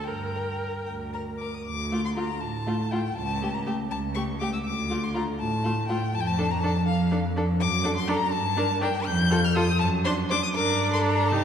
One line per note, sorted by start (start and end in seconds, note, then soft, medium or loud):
0.04 0.75 G2 medium
0.04 1.28 A#4 medium
0.04 0.85 G5 medium
0.36 0.44 A#4 soft
0.64 0.72 A#4 soft
0.86 1.54 D2 soft
0.86 0.94 G5 medium
1.13 1.23 A#4 soft
1.13 1.21 A#5 medium
1.38 1.49 A#4 soft
1.38 1.56 D6 medium
1.54 1.64 D#6 medium
1.65 2.30 D2 medium
1.65 2.03 D6 loud
1.91 1.99 A3 medium
1.91 2.00 F4 medium
2.05 2.10 C6 medium
2.16 2.25 A3 medium
2.16 2.25 F4 medium
2.16 2.42 A#5 medium
2.40 3.04 A2 medium
2.40 2.93 A5 medium
2.67 2.75 A3 medium
2.67 2.75 F4 medium
2.91 3.00 A3 medium
2.91 3.00 F4 medium
2.91 3.16 G5 medium
3.16 3.79 C#2 medium
3.16 3.56 A5 loud
3.41 3.49 A3 medium
3.41 3.50 G4 medium
3.54 3.65 A#5 medium
3.66 3.74 A3 medium
3.66 3.74 G4 medium
3.66 3.74 A5 medium
3.91 4.53 C#2 medium
3.91 3.99 A5 loud
4.14 4.24 A3 medium
4.14 4.24 G4 medium
4.14 4.22 C#6 loud
4.39 4.49 A3 medium
4.39 4.49 G4 medium
4.39 4.52 D6 medium
4.53 4.58 E6 medium
4.65 5.27 D2 medium
4.65 5.05 D6 loud
4.90 4.98 A3 medium
4.90 4.98 F4 medium
5.03 5.14 C6 medium
5.15 5.23 A3 medium
5.15 5.22 F4 medium
5.15 5.23 A#5 loud
5.39 6.01 A2 medium
5.39 5.87 A5 loud
5.64 5.73 A3 medium
5.64 5.72 F4 medium
5.88 5.98 A3 medium
5.88 5.97 F4 medium
5.88 6.16 G5 medium
6.14 6.75 F2 medium
6.14 6.22 A5 loud
6.20 6.28 G5 loud
6.27 6.52 A5 loud
6.38 6.46 D4 medium
6.38 6.46 A4 medium
6.50 6.62 A#5 medium
6.60 6.71 D4 medium
6.60 6.86 A5 loud
6.64 6.72 A4 medium
6.88 7.48 F2 medium
6.88 7.11 F5 loud
7.11 7.19 D4 medium
7.11 7.19 A4 medium
7.36 7.44 D4 medium
7.36 7.45 A4 medium
7.60 8.21 F#2 loud
7.60 7.94 D6 loud
7.84 7.92 D4 medium
7.84 7.92 A4 medium
7.97 8.10 C6 loud
8.08 8.16 D4 medium
8.08 8.17 A4 medium
8.08 8.34 A#5 loud
8.33 8.95 G2 medium
8.33 8.82 A5 loud
8.57 8.65 D4 medium
8.57 8.66 A#4 medium
8.81 8.89 D4 medium
8.81 8.90 A#4 medium
8.81 9.07 G5 loud
9.06 9.68 F2 loud
9.06 9.46 G6 loud
9.31 9.39 F4 medium
9.31 9.39 A4 medium
9.44 9.58 F6 loud
9.56 9.63 F4 medium
9.56 9.64 A4 medium
9.56 9.79 D#6 loud
9.80 10.42 F#2 loud
9.80 9.88 A5 loud
10.04 10.13 D4 medium
10.04 10.12 C5 medium
10.04 10.13 C6 loud
10.29 10.39 D4 medium
10.29 10.37 C5 medium
10.29 10.42 D6 loud
10.43 10.48 D#6 loud
10.55 11.32 G2 medium
10.55 11.33 D4 medium
10.55 10.90 A#4 medium
10.55 10.92 D6 loud
10.93 11.34 A4 medium
10.93 11.03 C6 loud
11.04 11.31 A#5 loud
11.29 11.44 C3 medium
11.29 11.44 D#4 medium
11.29 11.44 G4 medium
11.29 11.44 A5 loud